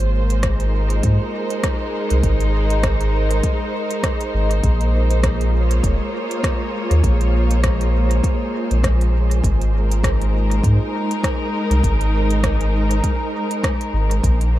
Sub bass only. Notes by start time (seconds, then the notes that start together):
Already playing: G#1
1.04 G#2
2.11 C2
2.23 G#1
4.34 G#1
4.63 A#1
5.84 F1
6.91 D#2
7.03 A#1
8.71 A#1
9.44 G#1
10.64 G#2
11.70 C2
11.83 G#1
13.93 G#1
14.23 A#1